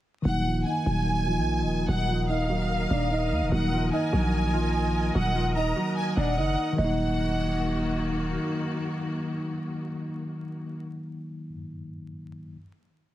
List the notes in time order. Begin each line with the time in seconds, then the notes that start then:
0.22 D#1 D#3 F#3 A#3 F#4 A#4 D#5 F#5 D#6
0.28 D#4
0.46 F3 F4
0.66 D#4 D#5 G#5
0.86 D#1 F#3 F#4
1.27 F3 F4
1.38 A#1
1.63 D#1
1.88 D#1 F#3 F#4 F#5
2.09 F3 F4
2.29 D#4 D#5 F5
2.50 F#3 F#4
2.91 D#1 D4 D5
3.11 D#4 D#5
3.31 D#2
3.42 D#1
3.49 D#1 D#3 F#3 A#3 F#4 D#5 F#5
3.55 D#4
3.72 F3 F4
3.92 D#4 D#5 G#5
4.13 A#1 F#3 F#4
4.54 F3 F4
5.15 D#1 F#3 F#4 F#5
5.35 F3 F4
5.56 D#4 D#5 A#5
5.76 F#3 F#4
5.96 G#5
6.17 D#1 D4 D5 F#5
6.38 F#1 D#4 D#5
6.73 D#3 F#3
6.78 D#1 D#3 A#3 F#4 D#5 F#5
6.84 D#4